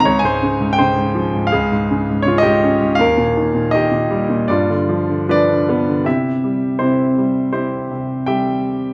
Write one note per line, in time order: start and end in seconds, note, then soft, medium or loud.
0.00 0.21 A#5 loud
0.05 1.48 C#2 medium
0.05 0.22 C#5 medium
0.19 0.77 G#5 medium
0.23 0.59 G#2 soft
0.23 0.75 C5 medium
0.43 0.78 C#3 medium
0.61 0.96 G#2 medium
0.73 1.51 G5 loud
0.78 1.50 C#3 medium
0.78 1.48 C5 medium
0.97 1.33 G#2 soft
1.15 1.50 F3 medium
1.35 1.52 G#2 soft
1.47 2.25 F5 medium
1.52 2.95 C#2 medium
1.52 2.21 G#4 medium
1.72 2.08 G#2 medium
1.91 2.24 C#3 medium
2.09 2.44 G#2 soft
2.22 2.96 C#3 medium
2.22 2.43 C#5 medium
2.28 2.43 F4 medium
2.38 2.98 D#5 loud
2.43 2.80 G#2 medium
2.43 2.94 G4 medium
2.64 2.98 C#4 medium
2.81 2.99 G#2 medium
2.95 4.45 D#2 medium
2.95 3.73 F5 loud
3.01 3.70 A#4 medium
3.18 3.53 A#2 medium
3.37 3.71 D#3 medium
3.55 3.90 A#2 medium
3.71 4.46 D#3 medium
3.71 4.46 G4 medium
3.71 4.50 D#5 medium
3.91 4.28 A#2 soft
4.11 4.48 G3 medium
4.30 4.48 A#2 medium
4.48 6.02 G2 medium
4.48 5.25 F4 medium
4.48 5.23 D5 medium
4.70 5.08 D3 medium
4.89 5.28 F3 medium
5.09 5.48 D3 soft
5.29 6.04 F3 medium
5.29 6.02 D4 medium
5.29 6.02 B4 medium
5.29 6.09 D5 medium
5.50 5.87 D3 medium
5.69 6.05 B3 medium
5.88 6.06 D3 medium
6.05 6.79 C3 soft
6.05 6.76 E4 soft
6.05 6.75 G4 soft
6.05 6.82 E5 medium
6.44 7.16 G3 soft
6.79 7.90 C3 soft
6.79 7.49 C4 soft
6.79 7.50 E4 soft
6.79 7.49 C5 medium
7.18 8.26 G3 soft
7.53 8.23 C4 soft
7.53 8.23 E4 soft
7.53 8.23 G4 soft
7.53 8.29 C5 medium
7.91 8.93 C3 soft
8.26 8.93 G3 soft
8.26 8.93 G4 soft
8.26 8.93 E5 medium
8.26 8.93 G5 medium